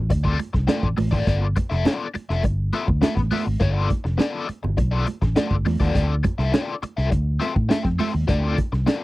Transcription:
0.10 D2, muted overdriven electric guitar stroke, kick, closed hi-hat, muted conga
0.24 C4 F4 A4 D5, kick
0.38 muted overdriven electric guitar stroke, closed hi-hat, muted conga
0.53 C2, muted overdriven electric guitar stroke, kick, snare
0.67 C4 F4 A4 D5, snare, closed hi-hat, high conga
0.83 A1, kick
0.97 A1, muted overdriven electric guitar stroke, open hi-hat, high conga
1.11 G#1 C4 F4 A4 D5, kick
1.26 G1 B3 F4 A4 D5, kick, closed hi-hat
1.56 muted overdriven electric guitar stroke, kick, closed hi-hat, muted conga
1.70 F1 B3 F4 A4 E5, snare
1.85 B3 F4 A4 D5, snare, closed hi-hat, high conga
2.14 muted overdriven electric guitar stroke, muted fingered electric bass stroke, closed hi-hat, muted conga
2.29 F1 B3 F4 A4 E5, snare
2.43 G1, muted overdriven electric guitar stroke, kick, closed hi-hat, muted conga
2.73 B3 F4 A4 E5, closed hi-hat, muted conga
2.88 D2, muted overdriven electric guitar stroke, kick
3.01 B3 F4 A4 E5, muted fingered electric bass stroke, snare, closed hi-hat, high conga
3.16 A1, muted overdriven electric guitar stroke, kick, snare
3.31 B3 F4 A4 E5, open hi-hat, high conga
3.46 G#1, muted overdriven electric guitar stroke
3.60 G1 A#3 E4 G#4 C#5, kick, closed hi-hat
3.71 B3 F4 A4 D5
3.90 kick, closed hi-hat, muted conga
4.04 F1, muted overdriven electric guitar stroke, snare
4.18 B3 F4 A4 D5, snare, closed hi-hat, high conga
4.47 muted overdriven electric guitar stroke, muted fingered electric bass stroke, closed hi-hat, muted conga
4.63 G1, muted overdriven electric guitar stroke, low conga
4.77 B1, muted overdriven electric guitar stroke, kick, closed hi-hat, muted conga
4.91 B3 F4 A4 D5
5.06 muted overdriven electric guitar stroke, closed hi-hat, muted conga
5.22 A1, muted overdriven electric guitar stroke, kick, snare
5.36 B3 F4 A4 D5, snare, closed hi-hat, high conga
5.51 G1, kick
5.65 E2, muted overdriven electric guitar stroke, snare, open hi-hat, high conga
5.80 D#2 B3 F4 A4 D5, kick
5.94 D2 C4 F4 A4 D5, kick, closed hi-hat
6.23 muted overdriven electric guitar stroke, kick, closed hi-hat, muted conga
6.38 C2 C4 F4 A4 E5, snare
6.52 C4 F4 A4 D5, snare, closed hi-hat, high conga
6.82 muted overdriven electric guitar stroke, muted fingered electric bass stroke, closed hi-hat, muted conga
6.97 C2 C4 F4 A4 E5, snare
7.10 D2, muted overdriven electric guitar stroke, kick, closed hi-hat, muted conga
7.40 C4 F4 A4 E5, closed hi-hat, muted conga
7.54 A2, muted overdriven electric guitar stroke, kick
7.69 C4 F4 A4 E5, muted fingered electric bass stroke, snare, closed hi-hat, high conga
7.84 F2, muted overdriven electric guitar stroke, kick, snare
7.99 C4 F4 A4 E5, open hi-hat, high conga
8.13 D#2, muted overdriven electric guitar stroke
8.28 D2 C4 F4 A4 D5, kick, closed hi-hat
8.58 kick, closed hi-hat, muted conga
8.72 C2, muted overdriven electric guitar stroke, snare
8.86 C4 F4 A4 D5, snare, closed hi-hat, high conga

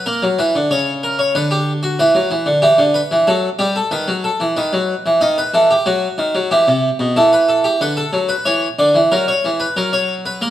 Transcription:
0.06 A#3 A#4
0.22 F#3
0.39 E3 B4
0.55 D3
0.71 C#3 C#5
1.03 A#4
1.19 C#5
1.35 D3 B4
1.51 G4
1.83 F#4
1.99 E3 B4
2.15 F#3
2.30 E3
2.46 D3
2.62 E3 G4
2.78 D3
2.94 B4
3.11 E3
3.27 F#3 A4
3.59 G3 G4
3.76 A4
3.91 D#3 B4
4.08 F#3
4.24 A4
4.40 E3
4.57 D#3 B4
4.73 F#3
5.06 E3
5.21 D#3 D#5
5.38 B4
5.54 E3 A4
5.71 G4
5.86 F#3 F#4
6.18 D#3
6.35 F#3
6.51 E3 G4
6.68 C3
6.99 B2
7.16 E3 A4
7.33 B4
7.49 A4
7.64 G4
7.81 D3 B4
7.97 A4
8.13 F#3
8.29 B4
8.45 E3 C#5
8.79 D3 D5
8.95 E3
9.12 F#3 A#4
9.28 C#5
9.45 E3
9.60 B4
9.77 F#3 A#4
9.93 C#5
10.26 B4
10.41 A#3 A#4

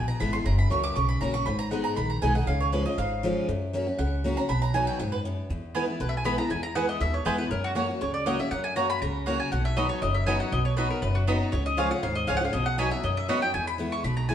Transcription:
Already playing: A#1 B2
0.08 A#5
0.20 G#1 E3 G#3 B3 E4 B5
0.33 B3 E4 C6
0.46 F#1 F#2 A#5
0.59 B5
0.70 C#2 F#3 A#3 C#4 F#4 C#6
0.84 D6
0.96 B1 C#3 C#6
1.09 B5
1.21 A#1 F#3 A#3 C#4 F#4 A#5
1.34 C#4 F#4 C#6
1.46 G#1 G#2 B5
1.59 A#5
1.71 G#3 B3 D#4 G#4 F#5
1.84 A#5
1.96 A#1 D#3 B5
2.10 A#5
2.22 B1 G#3 B3 D#4 G#4 G#5
2.35 D#4 G#4 F#5
2.47 C#2 C#3 F5
2.61 C#5
2.72 F3 G#3 C#4 F4 B4
2.86 C#4 F4 D#5
2.98 G#1 G#2 F5
3.23 F3 G#3 C#4 F4
3.48 F#2
3.73 F#3 A#3 C#4 F#4
3.87 C#4 F#4
3.98 C#2 C#3 F#5
4.24 F#3 A#3 C#4 F#4
4.37 C#4 F#4 A#5
4.49 B1 B2 B5
4.62 A#5
4.74 F#3 B3 D#4 F#4 G#5
4.87 G5
4.99 F#2 G#2 F#5
5.12 B4
5.25 F#2
5.50 E2
5.75 E3 G#3 B3 E4 B4 G#5
5.87 B3 E4
6.00 B1 B2 B4
6.09 E5
6.17 G#5
6.24 E3 G#3 B3 E4 B4 G#5 B5
6.38 B3 E4 A#5
6.50 E2 G#5
6.63 A#5
6.75 E3 G#3 B3 E4 B4 F#5 G#5
6.89 D#5
7.00 D#2 B2 E5
7.14 C#5
7.25 E2 E3 G#3 B3 E4 B4 C5 G#5
7.38 B3 E4 B4
7.51 F#2 A#4
7.64 F#4
7.75 F#3 A#3 C#4 F#4 C#5 F#5
7.89 C#4 F#4
8.01 C#2 C#3 C#5
8.14 D5
8.26 F#3 A#3 C#4 F#4 C#5 D#5 F#5
8.39 C#4 F#4 E5
8.51 F#2 F#5
8.64 G#5
8.76 F#3 A#3 C#4 F#4 C#5 F#5 A#5
8.90 B5
9.02 C#2 C#3 A#5
9.26 F#3 A#3 C#4 F#4 C#5 F#5
9.40 G#5
9.52 B1 B2 F#5
9.65 E5
9.77 F#3 B3 D#4 F#4 D#5 B5
9.89 C#5
10.02 F#1 F#2 D#5
10.14 E5
10.26 F#3 B3 D#4 F#4 D#5 G#5 B5
10.40 F#5
10.52 B1 B2 D#5
10.65 C#5
10.76 F#3 B3 D#4 F#4 B4 D#5 B5
10.90 A#4
11.02 F#1 F#2 B4
11.15 F#4
11.27 F#3 B3 D#4 F#4 D#5 B5
11.52 C#2 C#3 C#5
11.66 D#5
11.77 F3 G#3 C#4 F4 C#5 F5 G#5
11.90 C#4 F4 F#5
12.03 D#2 G#2 F5
12.15 D#5
12.27 C#2 F3 G#3 C#4 F4 C#5 F5 G#5
12.37 F4 F#5
12.42 C#4 F5
12.53 B1 B2 D#5
12.66 F#5
12.78 F#3 B3 D#4 F#4 D#5 G#5 B5
12.91 D#4 F#4 E5
13.04 F#2 D#5
13.17 E5
13.28 F#3 B3 D#4 F#4 D#5 F#5 B5
13.41 F#4 G5
13.54 E2 G#5
13.67 B5
13.78 E3 G#3 B3 E4
13.92 C#6
14.04 B1 B2 B5
14.17 A#5
14.29 E3 G#3 B3 E4 G#5

